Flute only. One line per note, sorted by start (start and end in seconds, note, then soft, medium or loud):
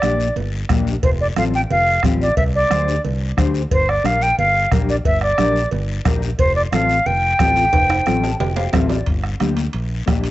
0.00 0.34 D5 medium
1.04 1.10 C5 medium
1.21 1.27 D5 medium
1.38 1.44 F5 medium
1.55 1.61 G5 loud
1.71 2.02 F5 loud
2.21 2.36 D5 medium
2.37 2.43 E5 medium
2.55 3.01 D5 medium
3.73 3.91 C5 loud
3.89 4.07 D5 medium
4.06 4.24 F5 medium
4.22 4.38 G5 loud
4.39 4.70 F5 loud
4.89 4.95 D5 medium
5.06 5.21 E5 loud
5.23 5.69 D5 medium
6.39 6.54 C5 loud
6.56 6.62 D5 medium
6.72 7.08 F5 loud
7.06 8.74 G5 loud